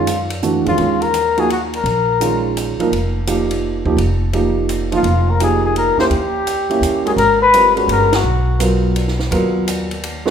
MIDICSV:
0, 0, Header, 1, 6, 480
1, 0, Start_track
1, 0, Tempo, 355240
1, 1055, Time_signature, 3, 2, 24, 8
1, 13923, End_track
2, 0, Start_track
2, 0, Title_t, "Trumpet"
2, 0, Program_c, 0, 56
2, 0, Note_on_c, 0, 65, 71
2, 440, Note_off_c, 0, 65, 0
2, 927, Note_on_c, 0, 65, 78
2, 1385, Note_on_c, 0, 70, 88
2, 1406, Note_off_c, 0, 65, 0
2, 1890, Note_on_c, 0, 68, 75
2, 1910, Note_off_c, 0, 70, 0
2, 2035, Note_off_c, 0, 68, 0
2, 2062, Note_on_c, 0, 66, 68
2, 2194, Note_off_c, 0, 66, 0
2, 2382, Note_on_c, 0, 70, 79
2, 3263, Note_off_c, 0, 70, 0
2, 6709, Note_on_c, 0, 65, 70
2, 7168, Note_on_c, 0, 70, 71
2, 7188, Note_off_c, 0, 65, 0
2, 7316, Note_off_c, 0, 70, 0
2, 7344, Note_on_c, 0, 68, 72
2, 7617, Note_off_c, 0, 68, 0
2, 7640, Note_on_c, 0, 68, 73
2, 7781, Note_off_c, 0, 68, 0
2, 7804, Note_on_c, 0, 70, 79
2, 8086, Note_off_c, 0, 70, 0
2, 8106, Note_on_c, 0, 72, 85
2, 8178, Note_off_c, 0, 72, 0
2, 8266, Note_on_c, 0, 67, 82
2, 9485, Note_off_c, 0, 67, 0
2, 9545, Note_on_c, 0, 68, 72
2, 9617, Note_off_c, 0, 68, 0
2, 9701, Note_on_c, 0, 70, 94
2, 9994, Note_off_c, 0, 70, 0
2, 10026, Note_on_c, 0, 71, 92
2, 10468, Note_off_c, 0, 71, 0
2, 10700, Note_on_c, 0, 70, 85
2, 11020, Note_on_c, 0, 66, 74
2, 11040, Note_off_c, 0, 70, 0
2, 11642, Note_off_c, 0, 66, 0
2, 13923, End_track
3, 0, Start_track
3, 0, Title_t, "Grand piano"
3, 0, Program_c, 1, 0
3, 573, Note_on_c, 1, 52, 46
3, 583, Note_on_c, 1, 57, 44
3, 585, Note_on_c, 1, 62, 45
3, 587, Note_on_c, 1, 66, 51
3, 858, Note_off_c, 1, 52, 0
3, 863, Note_off_c, 1, 57, 0
3, 864, Note_off_c, 1, 62, 0
3, 865, Note_off_c, 1, 66, 0
3, 885, Note_on_c, 1, 56, 44
3, 889, Note_on_c, 1, 51, 46
3, 896, Note_on_c, 1, 61, 43
3, 904, Note_on_c, 1, 65, 50
3, 1026, Note_off_c, 1, 51, 0
3, 1028, Note_off_c, 1, 56, 0
3, 1042, Note_off_c, 1, 61, 0
3, 1042, Note_off_c, 1, 65, 0
3, 1046, Note_on_c, 1, 51, 44
3, 1049, Note_on_c, 1, 56, 43
3, 1062, Note_on_c, 1, 61, 43
3, 1062, Note_on_c, 1, 65, 51
3, 1334, Note_off_c, 1, 51, 0
3, 1336, Note_off_c, 1, 56, 0
3, 1343, Note_off_c, 1, 61, 0
3, 1343, Note_off_c, 1, 65, 0
3, 1847, Note_on_c, 1, 53, 51
3, 1855, Note_on_c, 1, 63, 51
3, 1857, Note_on_c, 1, 58, 48
3, 1865, Note_on_c, 1, 66, 60
3, 1997, Note_off_c, 1, 53, 0
3, 2001, Note_off_c, 1, 63, 0
3, 2002, Note_off_c, 1, 58, 0
3, 2007, Note_off_c, 1, 66, 0
3, 2974, Note_on_c, 1, 51, 43
3, 2979, Note_on_c, 1, 56, 39
3, 2983, Note_on_c, 1, 61, 36
3, 2992, Note_on_c, 1, 65, 50
3, 3708, Note_off_c, 1, 51, 0
3, 3710, Note_off_c, 1, 56, 0
3, 3712, Note_off_c, 1, 61, 0
3, 3717, Note_off_c, 1, 65, 0
3, 3777, Note_on_c, 1, 53, 56
3, 3779, Note_on_c, 1, 58, 53
3, 3787, Note_on_c, 1, 63, 54
3, 3796, Note_on_c, 1, 70, 64
3, 3923, Note_off_c, 1, 53, 0
3, 3924, Note_off_c, 1, 58, 0
3, 3928, Note_off_c, 1, 63, 0
3, 3933, Note_off_c, 1, 70, 0
3, 4422, Note_on_c, 1, 53, 47
3, 4423, Note_on_c, 1, 58, 43
3, 4432, Note_on_c, 1, 63, 43
3, 4433, Note_on_c, 1, 67, 53
3, 5152, Note_off_c, 1, 53, 0
3, 5152, Note_off_c, 1, 58, 0
3, 5157, Note_off_c, 1, 63, 0
3, 5158, Note_off_c, 1, 67, 0
3, 5213, Note_on_c, 1, 53, 57
3, 5215, Note_on_c, 1, 58, 50
3, 5221, Note_on_c, 1, 63, 49
3, 5227, Note_on_c, 1, 67, 59
3, 5361, Note_off_c, 1, 53, 0
3, 5362, Note_off_c, 1, 58, 0
3, 5365, Note_off_c, 1, 63, 0
3, 5368, Note_off_c, 1, 67, 0
3, 5853, Note_on_c, 1, 53, 49
3, 5856, Note_on_c, 1, 58, 46
3, 5862, Note_on_c, 1, 63, 47
3, 5870, Note_on_c, 1, 67, 52
3, 6588, Note_off_c, 1, 53, 0
3, 6590, Note_off_c, 1, 58, 0
3, 6593, Note_off_c, 1, 63, 0
3, 6597, Note_off_c, 1, 67, 0
3, 6644, Note_on_c, 1, 53, 59
3, 6648, Note_on_c, 1, 58, 52
3, 6652, Note_on_c, 1, 63, 58
3, 6665, Note_on_c, 1, 65, 66
3, 6797, Note_off_c, 1, 53, 0
3, 6800, Note_off_c, 1, 58, 0
3, 6801, Note_off_c, 1, 63, 0
3, 6808, Note_off_c, 1, 65, 0
3, 7294, Note_on_c, 1, 53, 49
3, 7301, Note_on_c, 1, 58, 42
3, 7314, Note_on_c, 1, 63, 46
3, 7320, Note_on_c, 1, 67, 55
3, 8029, Note_off_c, 1, 53, 0
3, 8033, Note_off_c, 1, 58, 0
3, 8039, Note_off_c, 1, 63, 0
3, 8042, Note_off_c, 1, 67, 0
3, 8078, Note_on_c, 1, 58, 58
3, 8089, Note_on_c, 1, 61, 51
3, 8092, Note_on_c, 1, 64, 50
3, 8100, Note_on_c, 1, 67, 64
3, 8235, Note_off_c, 1, 58, 0
3, 8240, Note_off_c, 1, 61, 0
3, 8242, Note_off_c, 1, 64, 0
3, 8246, Note_off_c, 1, 67, 0
3, 9048, Note_on_c, 1, 58, 52
3, 9048, Note_on_c, 1, 61, 49
3, 9056, Note_on_c, 1, 67, 57
3, 9057, Note_on_c, 1, 64, 49
3, 9501, Note_off_c, 1, 58, 0
3, 9501, Note_off_c, 1, 61, 0
3, 9505, Note_off_c, 1, 64, 0
3, 9505, Note_off_c, 1, 67, 0
3, 9526, Note_on_c, 1, 56, 46
3, 9531, Note_on_c, 1, 61, 42
3, 9538, Note_on_c, 1, 66, 41
3, 9546, Note_on_c, 1, 70, 51
3, 9679, Note_off_c, 1, 56, 0
3, 9682, Note_off_c, 1, 61, 0
3, 9685, Note_off_c, 1, 66, 0
3, 9689, Note_off_c, 1, 70, 0
3, 10183, Note_on_c, 1, 55, 50
3, 10185, Note_on_c, 1, 60, 44
3, 10196, Note_on_c, 1, 65, 46
3, 10198, Note_on_c, 1, 70, 55
3, 10465, Note_off_c, 1, 55, 0
3, 10467, Note_off_c, 1, 60, 0
3, 10472, Note_off_c, 1, 65, 0
3, 10473, Note_off_c, 1, 70, 0
3, 10492, Note_on_c, 1, 56, 48
3, 10495, Note_on_c, 1, 61, 45
3, 10499, Note_on_c, 1, 66, 49
3, 10505, Note_on_c, 1, 71, 56
3, 10911, Note_off_c, 1, 56, 0
3, 10912, Note_off_c, 1, 61, 0
3, 10915, Note_off_c, 1, 66, 0
3, 10918, Note_off_c, 1, 71, 0
3, 11611, Note_on_c, 1, 59, 47
3, 11612, Note_on_c, 1, 54, 53
3, 11616, Note_on_c, 1, 65, 46
3, 11630, Note_on_c, 1, 70, 59
3, 12348, Note_off_c, 1, 54, 0
3, 12348, Note_off_c, 1, 59, 0
3, 12350, Note_off_c, 1, 65, 0
3, 12357, Note_off_c, 1, 70, 0
3, 12575, Note_on_c, 1, 54, 60
3, 12589, Note_on_c, 1, 59, 51
3, 12589, Note_on_c, 1, 65, 51
3, 12597, Note_on_c, 1, 70, 65
3, 13309, Note_off_c, 1, 54, 0
3, 13316, Note_off_c, 1, 59, 0
3, 13316, Note_off_c, 1, 65, 0
3, 13320, Note_off_c, 1, 70, 0
3, 13855, Note_on_c, 1, 56, 64
3, 13863, Note_on_c, 1, 61, 62
3, 13866, Note_on_c, 1, 66, 59
3, 13874, Note_on_c, 1, 71, 68
3, 13923, Note_off_c, 1, 56, 0
3, 13923, Note_off_c, 1, 61, 0
3, 13923, Note_off_c, 1, 66, 0
3, 13923, Note_off_c, 1, 71, 0
3, 13923, End_track
4, 0, Start_track
4, 0, Title_t, "Upright bass"
4, 0, Program_c, 2, 32
4, 0, Note_on_c, 2, 42, 69
4, 837, Note_off_c, 2, 42, 0
4, 894, Note_on_c, 2, 41, 55
4, 1046, Note_off_c, 2, 41, 0
4, 1059, Note_on_c, 2, 39, 70
4, 2444, Note_off_c, 2, 39, 0
4, 2482, Note_on_c, 2, 34, 71
4, 3711, Note_off_c, 2, 34, 0
4, 3940, Note_on_c, 2, 29, 64
4, 5160, Note_off_c, 2, 29, 0
4, 5210, Note_on_c, 2, 39, 59
4, 5351, Note_off_c, 2, 39, 0
4, 5359, Note_on_c, 2, 29, 69
4, 6755, Note_off_c, 2, 29, 0
4, 6796, Note_on_c, 2, 29, 73
4, 8030, Note_off_c, 2, 29, 0
4, 8243, Note_on_c, 2, 39, 68
4, 9158, Note_off_c, 2, 39, 0
4, 9199, Note_on_c, 2, 39, 63
4, 9656, Note_off_c, 2, 39, 0
4, 9680, Note_on_c, 2, 32, 78
4, 10597, Note_off_c, 2, 32, 0
4, 10642, Note_on_c, 2, 31, 69
4, 11097, Note_off_c, 2, 31, 0
4, 11129, Note_on_c, 2, 35, 77
4, 12520, Note_off_c, 2, 35, 0
4, 12578, Note_on_c, 2, 39, 82
4, 13923, Note_off_c, 2, 39, 0
4, 13923, End_track
5, 0, Start_track
5, 0, Title_t, "Muted upright bass strokes"
5, 3775, Note_on_c, 9, 29, 31
5, 3910, Note_off_c, 9, 29, 0
5, 8068, Note_on_c, 9, 29, 35
5, 8203, Note_off_c, 9, 29, 0
5, 13923, End_track
6, 0, Start_track
6, 0, Title_t, "Drums"
6, 96, Note_on_c, 9, 44, 48
6, 96, Note_on_c, 9, 51, 57
6, 231, Note_off_c, 9, 44, 0
6, 231, Note_off_c, 9, 51, 0
6, 409, Note_on_c, 9, 51, 51
6, 544, Note_off_c, 9, 51, 0
6, 572, Note_on_c, 9, 44, 49
6, 707, Note_off_c, 9, 44, 0
6, 897, Note_on_c, 9, 51, 34
6, 1032, Note_off_c, 9, 51, 0
6, 1050, Note_on_c, 9, 51, 44
6, 1185, Note_off_c, 9, 51, 0
6, 1374, Note_on_c, 9, 51, 36
6, 1509, Note_off_c, 9, 51, 0
6, 1537, Note_on_c, 9, 44, 51
6, 1537, Note_on_c, 9, 51, 55
6, 1673, Note_off_c, 9, 44, 0
6, 1673, Note_off_c, 9, 51, 0
6, 1858, Note_on_c, 9, 51, 35
6, 1994, Note_off_c, 9, 51, 0
6, 2030, Note_on_c, 9, 51, 47
6, 2166, Note_off_c, 9, 51, 0
6, 2345, Note_on_c, 9, 51, 37
6, 2480, Note_off_c, 9, 51, 0
6, 2509, Note_on_c, 9, 51, 41
6, 2644, Note_off_c, 9, 51, 0
6, 2987, Note_on_c, 9, 44, 50
6, 2987, Note_on_c, 9, 51, 56
6, 3122, Note_off_c, 9, 44, 0
6, 3122, Note_off_c, 9, 51, 0
6, 3470, Note_on_c, 9, 44, 45
6, 3470, Note_on_c, 9, 51, 53
6, 3605, Note_off_c, 9, 44, 0
6, 3605, Note_off_c, 9, 51, 0
6, 3783, Note_on_c, 9, 51, 36
6, 3918, Note_off_c, 9, 51, 0
6, 3957, Note_on_c, 9, 51, 47
6, 4092, Note_off_c, 9, 51, 0
6, 4423, Note_on_c, 9, 44, 52
6, 4423, Note_on_c, 9, 51, 57
6, 4558, Note_off_c, 9, 44, 0
6, 4558, Note_off_c, 9, 51, 0
6, 4738, Note_on_c, 9, 51, 49
6, 4873, Note_off_c, 9, 51, 0
6, 5209, Note_on_c, 9, 36, 44
6, 5344, Note_off_c, 9, 36, 0
6, 5382, Note_on_c, 9, 51, 47
6, 5517, Note_off_c, 9, 51, 0
6, 5855, Note_on_c, 9, 51, 47
6, 5990, Note_off_c, 9, 51, 0
6, 6337, Note_on_c, 9, 44, 45
6, 6337, Note_on_c, 9, 51, 52
6, 6472, Note_off_c, 9, 44, 0
6, 6472, Note_off_c, 9, 51, 0
6, 6650, Note_on_c, 9, 51, 36
6, 6785, Note_off_c, 9, 51, 0
6, 6810, Note_on_c, 9, 51, 46
6, 6945, Note_off_c, 9, 51, 0
6, 7299, Note_on_c, 9, 44, 46
6, 7299, Note_on_c, 9, 51, 51
6, 7434, Note_off_c, 9, 44, 0
6, 7434, Note_off_c, 9, 51, 0
6, 7782, Note_on_c, 9, 51, 46
6, 7917, Note_off_c, 9, 51, 0
6, 8092, Note_on_c, 9, 38, 44
6, 8227, Note_off_c, 9, 38, 0
6, 8252, Note_on_c, 9, 51, 45
6, 8387, Note_off_c, 9, 51, 0
6, 8741, Note_on_c, 9, 44, 49
6, 8741, Note_on_c, 9, 51, 55
6, 8876, Note_off_c, 9, 44, 0
6, 8876, Note_off_c, 9, 51, 0
6, 9060, Note_on_c, 9, 51, 37
6, 9195, Note_off_c, 9, 51, 0
6, 9228, Note_on_c, 9, 44, 52
6, 9228, Note_on_c, 9, 51, 51
6, 9363, Note_off_c, 9, 44, 0
6, 9363, Note_off_c, 9, 51, 0
6, 9547, Note_on_c, 9, 51, 36
6, 9682, Note_off_c, 9, 51, 0
6, 9704, Note_on_c, 9, 51, 53
6, 9839, Note_off_c, 9, 51, 0
6, 10183, Note_on_c, 9, 44, 57
6, 10183, Note_on_c, 9, 51, 67
6, 10318, Note_off_c, 9, 44, 0
6, 10318, Note_off_c, 9, 51, 0
6, 10496, Note_on_c, 9, 51, 40
6, 10631, Note_off_c, 9, 51, 0
6, 10662, Note_on_c, 9, 51, 57
6, 10797, Note_off_c, 9, 51, 0
6, 10979, Note_on_c, 9, 38, 75
6, 10982, Note_on_c, 9, 51, 61
6, 11114, Note_off_c, 9, 38, 0
6, 11117, Note_off_c, 9, 51, 0
6, 11621, Note_on_c, 9, 44, 54
6, 11621, Note_on_c, 9, 51, 66
6, 11756, Note_off_c, 9, 44, 0
6, 11756, Note_off_c, 9, 51, 0
6, 12105, Note_on_c, 9, 51, 55
6, 12240, Note_off_c, 9, 51, 0
6, 12266, Note_on_c, 9, 38, 29
6, 12401, Note_off_c, 9, 38, 0
6, 12423, Note_on_c, 9, 38, 42
6, 12559, Note_off_c, 9, 38, 0
6, 12590, Note_on_c, 9, 51, 59
6, 12725, Note_off_c, 9, 51, 0
6, 13074, Note_on_c, 9, 44, 54
6, 13074, Note_on_c, 9, 51, 67
6, 13209, Note_off_c, 9, 44, 0
6, 13209, Note_off_c, 9, 51, 0
6, 13392, Note_on_c, 9, 51, 44
6, 13527, Note_off_c, 9, 51, 0
6, 13559, Note_on_c, 9, 51, 63
6, 13695, Note_off_c, 9, 51, 0
6, 13870, Note_on_c, 9, 38, 46
6, 13923, Note_off_c, 9, 38, 0
6, 13923, End_track
0, 0, End_of_file